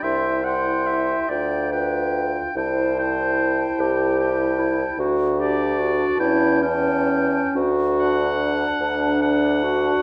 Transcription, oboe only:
\new Staff \with { instrumentName = "Oboe" } { \time 6/8 \key c \lydian \tempo 4. = 48 g''8 g''4 g''8 g''4 | g''8 g''4. g''4 | r8 d''4 g''8 g''4 | r8 fis''4. fis''4 | }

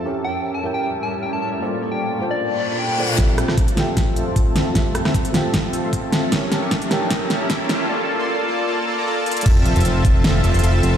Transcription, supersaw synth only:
\new Staff \with { instrumentName = "Supersaw synth" } { \time 4/4 \key f \major \tempo 4 = 153 <cis' g' bes' e'' a''>1 | <bes f' a' d'' a''>1 | r8 <c' f' a' e'' a''>16 <c' f' a' e'' a''>16 <a' a''>8 <c' f' a' e'' a''>8 c'8 <c' f' a' e'' a''>16 <c' f' a' e'' c'''>16 <c' f' a' e'' a''>8 <c' f' a' e'' a''>8 | <c' f' a' e''>8 <c' f' a' e'' a''>16 <c' f' a' e'' a''>16 <c' f' a' e'' a''>8 <c' f' a' e'' a''>8 <c' f' a' e''>8 <c' f' a' e'' a''>16 <c' f' a' e'' c'''>16 <f' a' e'' a''>8 <c' f' a' e'' a''>8 |
<cis' g' bes' e'' a''>8 <cis' g' bes' e'' a''>16 <cis' g' bes' e'' cis'''>16 <g' bes'>8 <cis' g' bes' e'' a''>8 <cis' bes' e''>8 <cis' g' bes' e'' a''>16 <cis' g' bes' e'' bes''>16 <cis' g' e''>8 <cis' g' bes' e'' a''>8 | <bes f' a' d'' a''>8 <bes f' a' d'' a''>16 <bes f' a' d'' c'''>16 <bes f' a' d'' a''>8 <bes f' a' d'' a''>8 <bes f' a' d'' a''>8 <bes f' a' d'' a''>16 <bes f' a' d'' bes''>16 <bes f' a' d'' a''>8 <bes f' a' d'' a''>8 | <c' f' a' e'' a''>8 <c' f' a' e'' a''>16 <c' f' a' e'' a''>16 <c' f' a' e'' a''>8 <c' f' a' e'' a''>8 <c' f' a' e'' a''>8 <c' f' a' e'' a''>16 <c' f' a' e'' c'''>16 <c' f' a' e'' a''>8 <c' f' a' e'' a''>8 | }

